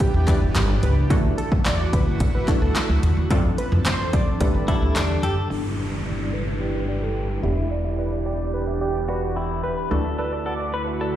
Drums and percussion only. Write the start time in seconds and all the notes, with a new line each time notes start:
0.00 kick, closed hi-hat
0.28 kick, clap, closed hi-hat
0.55 snare, clap, closed hi-hat
0.83 closed hi-hat
1.10 kick, closed hi-hat
1.38 closed hi-hat
1.52 kick
1.65 snare, clap, closed hi-hat
1.93 kick, closed hi-hat
2.20 kick, closed hi-hat
2.48 kick, clap, closed hi-hat
2.76 snare, clap, closed hi-hat
3.03 closed hi-hat
3.31 kick, closed hi-hat
3.58 closed hi-hat
3.85 snare, clap, closed hi-hat
4.13 kick, closed hi-hat
4.41 kick, closed hi-hat
4.68 kick, closed hi-hat
4.96 snare, clap, closed hi-hat
5.23 closed hi-hat